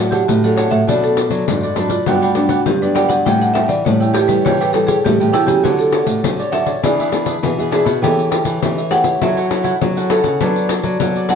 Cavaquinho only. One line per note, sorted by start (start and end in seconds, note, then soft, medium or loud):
0.00 0.10 A4 soft
0.00 0.10 C#5 soft
0.00 0.11 F#5 soft
0.11 0.21 D4 medium
0.11 0.22 A4 medium
0.11 0.22 C#5 medium
0.11 0.22 F#5 medium
0.43 0.56 A4 soft
0.43 0.57 C#5 soft
0.43 0.57 F#5 soft
0.57 0.71 D4 medium
0.57 0.72 A4 medium
0.57 0.70 C#5 medium
0.57 0.69 F#5 medium
0.71 0.87 A4 soft
0.71 0.86 C#5 soft
0.71 0.86 F#5 soft
0.88 1.15 D4 medium
0.88 1.16 A4 medium
0.88 1.17 B4 medium
0.88 1.17 D5 medium
1.16 1.60 D4 soft
1.16 1.61 A4 medium
1.16 1.61 B4 medium
1.16 1.62 D5 medium
1.63 1.75 A4 soft
1.63 1.76 B4 soft
1.63 1.77 D5 soft
1.76 1.90 D4 medium
1.76 1.90 A4 medium
1.76 1.90 B4 medium
1.76 1.88 D5 medium
1.89 2.06 A4 soft
1.89 2.05 B4 soft
1.89 2.04 D5 soft
2.07 2.21 F#4 medium
2.07 2.21 G4 medium
2.07 2.22 B4 medium
2.07 2.22 D5 medium
2.22 2.31 F#4 medium
2.22 2.31 G4 medium
2.22 2.31 B4 medium
2.22 2.32 D5 medium
2.35 2.48 F#4 soft
2.35 2.48 G4 soft
2.35 2.49 B4 soft
2.35 2.49 D5 medium
2.49 2.59 F#4 medium
2.49 2.59 G4 medium
2.49 2.60 B4 medium
2.49 2.60 D5 medium
2.82 2.94 G4 soft
2.82 2.95 B4 soft
2.82 2.95 D5 soft
2.95 3.09 F#4 medium
2.95 3.09 G4 medium
2.95 3.09 B4 medium
2.95 3.07 D5 medium
3.08 3.25 G4 soft
3.08 3.24 B4 soft
3.08 3.24 D5 soft
3.26 3.53 G4 medium
3.26 3.54 A4 medium
3.26 3.55 C#5 medium
3.26 3.55 G5 medium
3.54 3.99 G4 soft
3.54 3.99 A4 soft
3.54 3.99 C#5 soft
3.54 3.99 G5 medium
4.00 4.13 A4 soft
4.00 4.14 C#5 soft
4.00 4.14 G5 soft
4.13 4.28 G4 medium
4.13 4.28 A4 medium
4.13 4.28 C#5 medium
4.13 4.27 G5 medium
4.28 4.44 A4 soft
4.28 4.43 C#5 soft
4.28 4.43 G5 soft
4.45 4.59 G4 medium
4.45 4.59 A4 medium
4.45 4.60 C#5 medium
4.45 4.60 G5 medium
4.61 4.69 G4 medium
4.61 4.70 A4 medium
4.61 4.70 C#5 medium
4.61 4.70 G5 medium
4.74 4.86 G4 soft
4.74 4.86 A4 medium
4.74 4.87 C#5 soft
4.74 4.87 G5 medium
4.87 4.98 G4 medium
4.87 4.98 A4 medium
4.87 4.98 C#5 medium
4.87 4.98 G5 medium
5.20 5.32 A4 soft
5.20 5.32 C#5 soft
5.20 5.33 G5 soft
5.32 5.47 G4 medium
5.32 5.47 A4 medium
5.32 5.46 C#5 medium
5.32 5.45 G5 medium
5.46 5.62 A4 soft
5.46 5.62 C#5 soft
5.46 5.61 G5 soft
5.63 5.91 F#4 medium
5.63 5.92 A4 medium
5.63 5.93 C#5 medium
5.63 5.93 D5 medium
5.92 6.37 F#4 soft
5.92 6.37 A4 soft
5.92 6.37 C#5 soft
5.92 6.38 D5 medium
6.39 6.51 A4 soft
6.39 6.52 C#5 soft
6.39 6.52 D5 medium
6.52 6.66 F#4 medium
6.52 6.66 A4 medium
6.52 6.65 C#5 medium
6.52 6.64 D5 medium
6.65 6.82 A4 soft
6.65 6.81 C#5 soft
6.65 6.81 D5 soft
6.83 6.97 D4 medium
6.83 6.97 G#4 medium
6.83 6.98 B4 medium
6.83 6.98 E5 medium
6.99 7.08 D4 medium
6.99 7.08 G#4 medium
6.99 7.08 B4 medium
6.99 7.08 E5 medium
7.12 7.24 D4 soft
7.12 7.25 G#4 medium
7.12 7.25 B4 medium
7.12 7.26 E5 soft
7.26 7.36 D4 medium
7.26 7.36 G#4 medium
7.26 7.36 B4 medium
7.26 7.37 E5 medium
7.59 7.71 G#4 soft
7.59 7.71 B4 soft
7.59 7.72 E5 soft
7.71 7.86 D4 medium
7.71 7.85 G#4 medium
7.71 7.85 B4 medium
7.71 7.83 E5 medium
7.85 8.01 G#4 soft
7.85 8.00 B4 soft
7.85 8.00 E5 soft
8.02 8.29 G4 medium
8.02 8.30 A4 medium
8.02 8.31 C#5 medium
8.02 8.31 E5 medium
8.30 8.75 G4 medium
8.30 8.75 A4 medium
8.30 8.76 C#5 medium
8.30 8.76 E5 medium
8.78 8.90 A4 soft
8.78 8.91 C#5 soft
8.78 8.91 E5 medium
8.90 9.05 G4 medium
8.90 9.05 A4 medium
8.90 9.04 C#5 medium
8.90 9.03 E5 medium
9.04 9.20 A4 soft
9.04 9.20 C#5 soft
9.04 9.19 E5 soft
9.21 9.35 E4 medium
9.21 9.36 A4 medium
9.21 9.36 C#5 medium
9.21 9.36 F#5 medium
9.37 9.46 E4 medium
9.37 9.46 A4 medium
9.37 9.46 C#5 medium
9.37 9.46 F#5 medium
9.49 9.62 E4 soft
9.49 9.62 A4 soft
9.49 9.63 C#5 medium
9.49 9.63 F#5 medium
9.63 9.74 E4 medium
9.63 9.74 A4 medium
9.63 9.74 C#5 medium
9.63 9.75 F#5 medium
9.96 10.10 A4 soft
9.96 10.10 C#5 soft
9.96 10.10 F#5 soft
10.10 10.24 E4 medium
10.10 10.24 A4 medium
10.10 10.23 C#5 medium
10.10 10.22 F#5 medium
10.23 10.40 A4 soft
10.23 10.39 C#5 soft
10.23 10.38 F#5 soft
10.41 10.68 D4 medium
10.41 10.69 A4 medium
10.41 10.70 B4 medium
10.41 10.71 D5 medium
10.70 11.14 D4 medium
10.70 11.14 A4 medium
10.70 11.15 B4 medium
10.70 11.15 D5 medium
11.16 11.29 A4 soft
11.16 11.30 B4 medium
11.16 11.30 D5 soft
11.29 11.35 D4 medium
11.29 11.35 A4 medium
11.29 11.35 B4 medium
11.29 11.35 D5 medium